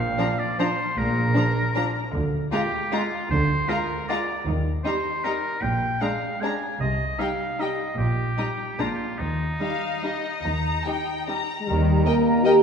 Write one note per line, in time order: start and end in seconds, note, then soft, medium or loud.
0.00 0.12 A#1 medium
0.00 0.12 A#2 soft
0.00 0.40 F5 medium
0.18 0.26 F3 soft
0.18 0.27 D4 soft
0.18 0.26 A#5 soft
0.39 0.58 D5 medium
0.59 0.67 F3 soft
0.59 0.67 D4 soft
0.59 0.99 C5 medium
0.59 0.67 A#5 soft
0.97 1.29 A#1 medium
0.97 1.29 A#2 medium
0.97 2.14 A#4 medium
1.35 1.44 F3 soft
1.35 1.43 D4 soft
1.35 1.44 A#5 soft
1.76 1.85 F3 soft
1.76 1.84 D4 soft
1.76 1.84 A#5 soft
2.14 2.44 D2 medium
2.14 2.44 D3 medium
2.52 2.61 G#3 soft
2.52 2.60 F4 soft
2.52 2.94 G4 medium
2.52 2.61 A#5 soft
2.92 3.01 G#3 soft
2.92 3.00 F4 soft
2.92 3.30 F4 medium
2.92 3.01 A#5 soft
3.30 3.61 D2 medium
3.30 3.61 D3 medium
3.30 3.70 C5 medium
3.69 3.77 G#3 soft
3.69 3.77 F4 soft
3.69 4.08 A#4 medium
3.69 3.77 A#5 soft
4.08 4.17 G#3 soft
4.08 4.18 F4 soft
4.08 4.46 D5 medium
4.08 4.17 A#5 soft
4.46 4.76 D#2 medium
4.46 4.77 D#3 medium
4.84 4.93 G3 soft
4.84 4.93 D#4 soft
4.84 5.25 C5 medium
4.84 4.94 A#5 soft
5.24 5.33 G3 soft
5.24 5.33 D#4 soft
5.24 5.63 A#4 medium
5.24 5.32 A#5 soft
5.62 5.93 A#1 medium
5.62 5.93 A#2 soft
5.62 6.03 G5 medium
6.01 6.09 G#3 soft
6.01 6.09 D4 soft
6.01 6.42 F5 medium
6.01 6.09 A#5 soft
6.41 6.50 G#3 soft
6.41 6.50 D4 soft
6.41 6.80 G#5 medium
6.41 6.51 A#5 soft
6.80 7.11 C2 soft
6.80 7.11 C3 soft
6.80 7.21 D#5 medium
7.19 7.28 G3 soft
7.19 7.27 D#4 soft
7.19 7.62 F5 medium
7.19 7.28 G5 soft
7.60 7.69 G3 soft
7.60 7.68 D#4 soft
7.60 7.97 D#5 medium
7.60 7.69 G5 soft
7.97 8.29 A#1 soft
7.97 8.29 A#2 soft
7.97 8.81 G4 medium
8.37 8.46 G3 soft
8.37 8.45 D#4 soft
8.37 8.46 A#5 soft
8.79 9.11 A#1 soft
8.79 9.11 A#2 soft
8.79 8.87 G#3 soft
8.79 8.87 D4 soft
8.79 9.20 F4 soft
8.79 8.87 A#5 soft
9.19 9.52 D#2 soft
9.19 9.51 D#3 soft
9.19 11.49 D#4 soft
9.59 9.69 G3 soft
9.59 9.69 D#4 soft
9.59 10.00 F5 soft
10.03 10.11 G3 soft
10.03 10.12 D#4 soft
10.03 10.44 D#5 soft
10.44 10.76 D#2 soft
10.44 10.77 D#3 soft
10.44 10.85 A#5 soft
10.85 10.94 G3 soft
10.85 10.94 D#4 soft
10.85 11.28 G5 soft
11.27 11.36 G3 soft
11.27 11.35 D#4 soft
11.27 11.67 A#5 soft
11.61 11.68 G#3 soft
11.67 12.00 D#2 soft
11.67 12.63 D#3 soft
11.67 12.00 D#3 soft
11.67 12.06 G3 medium
11.67 12.63 A#4 soft
11.67 12.63 A#5 soft
12.06 12.45 A#3 medium
12.06 12.14 A#4 soft
12.06 12.14 D#5 soft
12.06 12.15 G5 soft
12.45 12.63 G4 medium
12.45 12.54 A#4 soft
12.45 12.53 D#5 soft
12.45 12.53 G5 soft